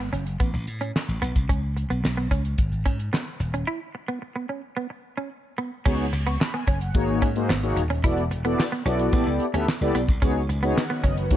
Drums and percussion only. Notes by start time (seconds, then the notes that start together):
0.13 closed hi-hat
0.27 closed hi-hat
0.40 kick, closed hi-hat
0.67 closed hi-hat
0.81 closed hi-hat
0.96 snare, clap
1.09 closed hi-hat
1.22 closed hi-hat
1.35 kick, closed hi-hat
1.49 kick, closed hi-hat
1.77 closed hi-hat
1.91 closed hi-hat
2.05 snare, clap
2.31 kick, closed hi-hat
2.45 closed hi-hat
2.58 kick, closed hi-hat
2.86 kick, closed hi-hat
3.00 closed hi-hat
3.14 snare, clap
3.41 closed hi-hat
3.54 closed hi-hat
5.86 kick, crash
6.00 closed hi-hat
6.13 closed hi-hat
6.27 closed hi-hat
6.41 snare, clap
6.67 kick, closed hi-hat
6.81 closed hi-hat
6.94 kick, closed hi-hat
7.22 kick, closed hi-hat
7.36 closed hi-hat
7.50 snare, clap
7.63 closed hi-hat
7.77 closed hi-hat
7.90 closed hi-hat
8.04 kick, closed hi-hat
8.18 closed hi-hat
8.31 closed hi-hat
8.45 closed hi-hat
8.60 snare, clap
8.86 closed hi-hat
8.99 closed hi-hat
9.13 kick, closed hi-hat
9.40 closed hi-hat
9.54 closed hi-hat
9.68 snare, clap
9.95 closed hi-hat
10.08 kick, closed hi-hat
10.22 kick, closed hi-hat
10.50 closed hi-hat
10.63 closed hi-hat
10.78 snare, clap
11.04 kick, closed hi-hat
11.17 closed hi-hat
11.31 kick, closed hi-hat